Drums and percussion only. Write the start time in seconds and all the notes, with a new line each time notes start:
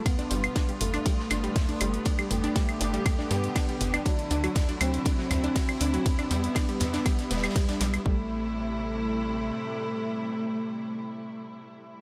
0.06 kick, closed hi-hat, mid tom, ride, claves
0.19 closed hi-hat
0.31 closed hi-hat, open hi-hat
0.44 closed hi-hat, claves
0.56 kick, snare, closed hi-hat, ride
0.69 closed hi-hat
0.81 closed hi-hat, mid tom, open hi-hat
0.94 closed hi-hat, claves
1.06 kick, closed hi-hat, ride
1.20 snare
1.30 snare, closed hi-hat, open hi-hat, claves
1.44 closed hi-hat
1.56 kick, snare, closed hi-hat, mid tom, open hi-hat, ride
1.69 closed hi-hat
1.80 closed hi-hat, open hi-hat, claves
1.94 closed hi-hat
2.05 kick, closed hi-hat, ride
2.19 closed hi-hat, claves
2.31 closed hi-hat, mid tom, open hi-hat
2.44 closed hi-hat
2.56 kick, snare, closed hi-hat, ride
2.69 closed hi-hat, claves
2.81 closed hi-hat, open hi-hat
2.94 closed hi-hat
3.06 kick, closed hi-hat, mid tom, ride, claves
3.19 snare
3.30 snare, closed hi-hat, open hi-hat
3.44 closed hi-hat
3.55 kick, snare, closed hi-hat, ride, claves
3.69 closed hi-hat
3.81 closed hi-hat, mid tom, open hi-hat
3.94 closed hi-hat, claves
4.05 kick, closed hi-hat, ride
4.19 closed hi-hat
4.30 closed hi-hat, open hi-hat
4.44 closed hi-hat, claves
4.55 kick, snare, closed hi-hat, mid tom, ride
4.69 closed hi-hat
4.81 closed hi-hat, open hi-hat, claves
4.94 closed hi-hat
5.05 kick, closed hi-hat, ride
5.19 snare
5.31 snare, closed hi-hat, mid tom, open hi-hat, claves
5.44 closed hi-hat
5.56 kick, snare, closed hi-hat, open hi-hat, ride
5.69 closed hi-hat, claves
5.80 closed hi-hat, open hi-hat
5.94 closed hi-hat
6.06 kick, closed hi-hat, mid tom, ride
6.19 closed hi-hat, claves
6.31 closed hi-hat, open hi-hat
6.44 closed hi-hat
6.55 kick, snare, closed hi-hat, ride, claves
6.69 closed hi-hat
6.80 snare, closed hi-hat, mid tom, open hi-hat
6.93 snare, closed hi-hat
7.06 kick, closed hi-hat, ride, claves
7.19 snare, closed hi-hat
7.31 snare, closed hi-hat, open hi-hat
7.37 snare, closed hi-hat
7.43 snare, closed hi-hat, claves
7.50 snare, closed hi-hat
7.56 kick, snare, closed hi-hat, mid tom, ride
7.69 snare, closed hi-hat
7.81 snare, closed hi-hat, open hi-hat
7.94 closed hi-hat, claves
8.06 kick